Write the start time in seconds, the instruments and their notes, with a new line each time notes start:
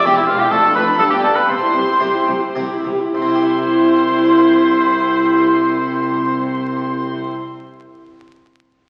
0.04 double bass section E1, cello section E2, harpsichord E2 C4 E4 G4, violin section G4 G5, oboe G4, viola section G4
0.17 oboe E4, violin section E4 E5, viola section E4
0.27 double bass section E1, cello section E2, harpsichord E2, oboe F4, violin section F4 F5, viola section G4
0.39 viola section E4, oboe G4, violin section G4 G5
0.50 double bass section F1, cello section F2, harpsichord F2 A3 D4, viola section F4, oboe A4, violin section A4 A5
0.63 viola section D4
0.73 double bass section F1, cello section F2, harpsichord F2, viola section F4, oboe B4, violin section B4 B5
0.87 viola section D4
0.97 double bass section G1, cello section G2, harpsichord G2 B3 D4 G4, viola section D4, violin section A4 A5, oboe A4
1.10 viola section B3, oboe G4, violin section G4 G5
1.22 double bass section G1, cello section G2, harpsichord G2, viola section D4, oboe A4, violin section A4 A5
1.36 viola section B3, violin section B4 B5, oboe B4
1.47 double bass section C2, cello section C3, harpsichord C3, viola section G4, oboe C5, violin section C5 C6
1.61 viola section E4
1.74 double bass section C2, harpsichord C3, cello section C3, viola section G4
1.88 viola section E4
2.00 double bass section C2, harpsichord C3 C4 E4 G4, cello section C3, viola section G4
2.15 viola section E4
2.27 double bass section C2, harpsichord C3, cello section C3, viola section G4
2.42 viola section E4
2.55 double bass section C2, harpsichord C3 C4 E4 G4, cello section C3, viola section G4
2.70 viola section E4
2.84 double bass section C2, harpsichord C3, cello section C3, viola section G4
3.00 viola section E4
3.15 double bass section C2, harpsichord C3, cello section C3, viola section E4, oboe C5, violin section C5 C6
3.22 harpsichord C4
3.29 harpsichord E4
3.35 harpsichord G4
3.43 harpsichord E5